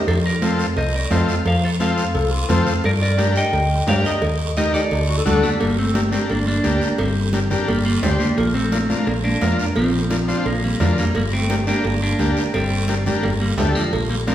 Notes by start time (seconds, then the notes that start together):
0.07 F2 A4 C5, cowbell, high conga, long guiro
0.26 A#4 D5
0.42 C4 F4 A4, cowbell, high conga, short guiro
0.59 short guiro
0.77 C2 C5 D#5, cowbell, long guiro
0.95 A#4 D5
1.11 F2 C4 F4 A4 C5 D#5, cowbell, high conga, low timbale, short guiro
1.29 short guiro
1.45 F2 C5 F5, cowbell, high conga, long guiro
1.64 A4 C5
1.80 C4 F4 A4 C5 F5, cowbell, high conga, short guiro
1.98 short guiro
2.14 C2 A4, cowbell, long guiro
2.32 F4
2.49 F2 C4 F4 A4 C5, cowbell, high conga, low conga, short guiro
2.67 short guiro
2.84 G2 A#4 D5, cowbell, high conga, long guiro
3.02 A#4 D5
3.17 D4 G4 A#4, cowbell, high conga, short guiro
3.36 D#5 G5, short guiro
3.53 D2, cowbell, high conga, long guiro
3.87 G2 D4 G4 A#4 D5 F5, cowbell, high conga, low timbale, short guiro
4.05 A#4 D#5, short guiro
4.22 D#2, cowbell, high conga, long guiro
4.57 D#4 G4 A#4 D#5, cowbell, high conga, short guiro
4.74 A4 D5, short guiro
4.91 D2, cowbell, long guiro
5.09 F#4
5.17 A4
5.25 D2 D3 G3 D4 F#4 A4, cowbell, high conga, low conga, short guiro
5.43 G3 A#3, short guiro
5.60 G1 G3 A#3, cowbell, high conga, long guiro
5.79 A3 C4
5.94 D4 G4 A#4, cowbell, high conga, short guiro
6.11 A3 C4 D4 G4 A#4, high conga, short guiro
6.29 G1 A#3 D4, cowbell, high conga, long guiro
6.47 A#3 D4
6.64 D2 D4 G4 A#4, cowbell, high conga, short guiro
6.82 short guiro
6.98 G1 G3 C4, cowbell, high conga, long guiro
7.33 D4 G4 A#4, cowbell, high conga, short guiro
7.50 D4 G4 A#4, low conga, short guiro
7.68 G1 G3 A#3, cowbell, high conga, long guiro
7.86 G3 A#3
8.02 D2 D3 G3 D4 G4 C5, cowbell, high conga, low conga, low timbale, short guiro
8.19 G3 A#3, short guiro
8.37 A#1 F3 A#3, cowbell, high conga, long guiro
8.54 A3 C4
8.72 D4 F4 A#4, cowbell, high conga, short guiro
8.89 D4 F4 A#4, high conga, short guiro
9.07 A#1 A#3 D4, cowbell, long guiro
9.24 A#3 D4, high conga
9.41 F2 D4 F4 A#4, cowbell, high conga, low timbale, short guiro
9.59 short guiro
9.76 A#1 F3 C4, cowbell, high conga, long guiro
10.10 D4 F4 A#4, cowbell, high conga, short guiro
10.28 D4 F4 C5, short guiro
10.46 A#1 F3 A#3, cowbell, high conga, long guiro
10.64 G3 A#3
10.80 F2 D3 G3 D4 F4 A#4, cowbell, high conga, low conga, low timbale, short guiro
10.98 G3 A#3, short guiro
11.15 G1 G3 A#3, cowbell, high conga, long guiro
11.33 A3 C4
11.49 D4 G4 A#4, cowbell, high conga, short guiro
11.67 A#3 D4 G4 A#4, high conga, short guiro
11.84 G1, cowbell, high conga, long guiro
12.03 A#3 D4
12.19 D2 D4 G4 A#4, cowbell, high conga, short guiro
12.37 short guiro
12.54 G1 G3 C4, cowbell, high conga, long guiro
12.88 D4 G4 A#4, cowbell, high conga, short guiro
13.06 D4 G4 A#4, high conga, low conga, short guiro
13.23 G1 G3 A#3, cowbell, high conga, long guiro
13.40 G3 A#3
13.57 D2 D3 G3 D4 G4 A4, cowbell, high conga, low conga, low timbale, short guiro
13.75 F3 A#3, short guiro
13.93 A#1, cowbell, high conga, long guiro
14.10 G3 A#3
14.27 F3 C4 D4 F4 A#4, cowbell, high conga, short guiro